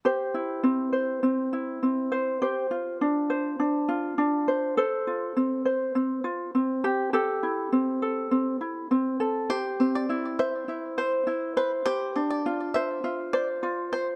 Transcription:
<<
  \new Staff \with { instrumentName = "Five-string banjo" } { \time 4/4 \key c \major \tempo 4 = 102 r1 | r1 | r1 | r1 |
c''8 r16 d''8 r16 e''16 r8. c''16 r8. b'16 r16 | c''8 r16 d''8 r16 e''16 r8. d''16 r8. c''16 r16 | }
  \new Staff \with { instrumentName = "Ukulele" } { \time 4/4 \key c \major <g' c''>8 e'8 c'8 c''8 c'8 e'8 c'8 c''8 | <g' c''>8 f'8 d'8 c''8 d'8 f'8 d'8 c''8 | <a' c''>8 f'8 c'8 c''8 c'8 f'8 c'8 g'8 | <g' a'>8 e'8 c'8 a'8 c'8 e'8 c'8 a'8 |
g'8 c'8 e'8 c''8 e'8 c''8 e'8 c''8 | g'8 d'8 f'8 c''8 f'8 c''8 f'8 c''8 | }
>>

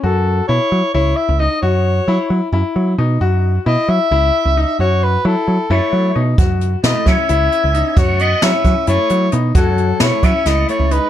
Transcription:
<<
  \new Staff \with { instrumentName = "Soprano saxophone" } { \time 7/8 \key fis \dorian \tempo 4 = 132 a'4 cis''4 cis''8 e''8 dis''8 | cis''2 r4. | r4 dis''8 e''2 | cis''8 b'8 a'4 cis''4 r8 |
r4 dis''8 e''2 | cis''8 dis''8 e''4 cis''4 r8 | a'4 cis''8 e''8 dis''8 cis''8 b'8 | }
  \new Staff \with { instrumentName = "Grand piano" } { \time 7/8 \key fis \dorian fis'4 e'4 e'4 dis'8 | fis'4 e'4 e'4 dis'8 | fis'4 e'4 e'4 dis'8 | fis'4 e'4 e'4 dis'8 |
fis'4 e'4 e'4 dis'8 | fis'4 e'4 e'4 dis'8 | fis'4 e'4 e'4 dis'8 | }
  \new Staff \with { instrumentName = "Clean electric guitar" } { \time 7/8 \key fis \dorian r2. r8 | r2. r8 | r2. r8 | r2 a4 r8 |
r4 a8 cis'2 | a8 b8 cis'4 a4 r8 | fis4 a8 cis'8 a8 a8 gis8 | }
  \new Staff \with { instrumentName = "Picked electric bass" } { \clef bass \time 7/8 \key fis \dorian fis,4 b,16 r16 fis16 r16 cis,8 r16 cis,8 r16 | fis,4 fis16 r16 fis16 r16 fis,16 r16 fis8 b,8 | fis,4 b,16 r16 fis16 r16 cis,8 r16 cis,8 r16 | fis,4 fis16 r16 fis16 r16 fis,16 r16 fis8 b,8 |
fis,4 b,16 r16 fis16 r16 cis,8 r16 cis,8 r16 | fis,4 fis16 r16 fis16 r16 fis,16 r16 fis8 b,8 | fis,4 b,16 r16 fis16 r16 cis,8 r16 cis,8 r16 | }
  \new DrumStaff \with { instrumentName = "Drums" } \drummode { \time 7/8 r4 r4 r4. | r4 r4 r4. | r4 r4 r4. | r4 r4 r4. |
<hh bd>8 hh8 <hh sn>8 <hh bd sn>8 hh8 hh8 hh8 | <hh bd>8 hh8 <hh sn>8 <hh bd>8 hh8 hh8 hh8 | <hh bd>8 hh8 <hh sn>8 <hh bd>8 <hh sn>8 hh8 hh8 | }
>>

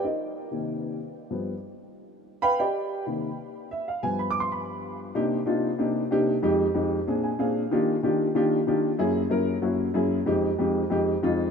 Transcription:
\new Staff \with { instrumentName = "Upright piano" } { \time 4/4 \key c \minor \tempo 4 = 187 << { <ees' bes' c'' ees''>4. r2 r8 | r2. r8 <b' f'' g'' b''>8 | <g' d'' ees'' g''>4. r2 e''8 | f''8 aes''8 \tuplet 3/2 { b''8 d'''8 c'''8 } b''4. r8 |
r1 | r2 r8 aes''8 f''4 | r1 | r1 |
r1 | } \\ { r4. <c ees bes>4. r4 | <g, f b>8 r2. r8 | r4. <c ees bes>8 r2 | r8 <g, f b>2.~ <g, f b>8 |
<c bes d' ees' g'>8 r8 <c bes d' ees' f'>8 r8 <c bes d' ees' g'>8 r8 <c bes d' ees' g'>8 r8 | <f, aes ees' g'>8 r8 <f, aes ees' g'>8 r8 <bes, c' d' aes'>8 r8 <bes, c' d' aes'>8 r8 | <ees bes d' f' g'>8 r8 <ees bes d' f' g'>8 r8 <ees bes d' f' g'>8 r8 <ees bes d' f' g'>8 r8 | <fis, ais cis' e' gis'>8 r8 <fis, ais cis' e' ais'>8 r8 <fis, ais cis' e' fis'>8 r8 <fis, ais cis' e' gis'>8 r8 |
<f, aes c' ees' g'>8 r8 <f, aes c' ees' g'>8 r8 <f, aes c' ees' g'>8 r8 <f, aes c' ees' f'>8 r8 | } >> }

